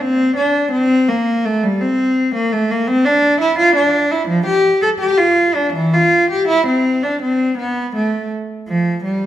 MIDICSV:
0, 0, Header, 1, 2, 480
1, 0, Start_track
1, 0, Key_signature, 0, "major"
1, 0, Tempo, 711744
1, 7, Time_signature, 4, 2, 24, 8
1, 3367, Tempo, 749064
1, 4327, Tempo, 726392
1, 6158, End_track
2, 0, Start_track
2, 0, Title_t, "Cello"
2, 0, Program_c, 0, 42
2, 6, Note_on_c, 0, 60, 106
2, 245, Note_off_c, 0, 60, 0
2, 246, Note_on_c, 0, 62, 86
2, 480, Note_off_c, 0, 62, 0
2, 483, Note_on_c, 0, 60, 100
2, 720, Note_off_c, 0, 60, 0
2, 730, Note_on_c, 0, 58, 92
2, 969, Note_off_c, 0, 58, 0
2, 979, Note_on_c, 0, 57, 98
2, 1094, Note_off_c, 0, 57, 0
2, 1101, Note_on_c, 0, 55, 89
2, 1216, Note_off_c, 0, 55, 0
2, 1219, Note_on_c, 0, 60, 94
2, 1581, Note_off_c, 0, 60, 0
2, 1582, Note_on_c, 0, 58, 87
2, 1699, Note_off_c, 0, 58, 0
2, 1703, Note_on_c, 0, 57, 95
2, 1821, Note_off_c, 0, 57, 0
2, 1828, Note_on_c, 0, 58, 88
2, 1940, Note_on_c, 0, 60, 105
2, 1943, Note_off_c, 0, 58, 0
2, 2058, Note_off_c, 0, 60, 0
2, 2058, Note_on_c, 0, 62, 105
2, 2295, Note_off_c, 0, 62, 0
2, 2298, Note_on_c, 0, 64, 91
2, 2413, Note_off_c, 0, 64, 0
2, 2417, Note_on_c, 0, 65, 108
2, 2531, Note_off_c, 0, 65, 0
2, 2534, Note_on_c, 0, 62, 90
2, 2764, Note_off_c, 0, 62, 0
2, 2773, Note_on_c, 0, 64, 86
2, 2887, Note_on_c, 0, 53, 102
2, 2889, Note_off_c, 0, 64, 0
2, 3003, Note_off_c, 0, 53, 0
2, 3008, Note_on_c, 0, 67, 97
2, 3242, Note_off_c, 0, 67, 0
2, 3251, Note_on_c, 0, 69, 92
2, 3298, Note_off_c, 0, 69, 0
2, 3369, Note_on_c, 0, 67, 96
2, 3481, Note_off_c, 0, 67, 0
2, 3483, Note_on_c, 0, 65, 92
2, 3723, Note_off_c, 0, 65, 0
2, 3723, Note_on_c, 0, 62, 87
2, 3841, Note_on_c, 0, 52, 105
2, 3847, Note_off_c, 0, 62, 0
2, 3966, Note_off_c, 0, 52, 0
2, 3972, Note_on_c, 0, 65, 96
2, 4209, Note_on_c, 0, 67, 92
2, 4210, Note_off_c, 0, 65, 0
2, 4320, Note_on_c, 0, 64, 105
2, 4323, Note_off_c, 0, 67, 0
2, 4439, Note_off_c, 0, 64, 0
2, 4443, Note_on_c, 0, 60, 91
2, 4678, Note_off_c, 0, 60, 0
2, 4685, Note_on_c, 0, 62, 86
2, 4804, Note_on_c, 0, 60, 88
2, 4805, Note_off_c, 0, 62, 0
2, 5040, Note_off_c, 0, 60, 0
2, 5046, Note_on_c, 0, 59, 93
2, 5281, Note_off_c, 0, 59, 0
2, 5293, Note_on_c, 0, 57, 77
2, 5524, Note_off_c, 0, 57, 0
2, 5772, Note_on_c, 0, 53, 91
2, 5992, Note_off_c, 0, 53, 0
2, 6009, Note_on_c, 0, 55, 82
2, 6158, Note_off_c, 0, 55, 0
2, 6158, End_track
0, 0, End_of_file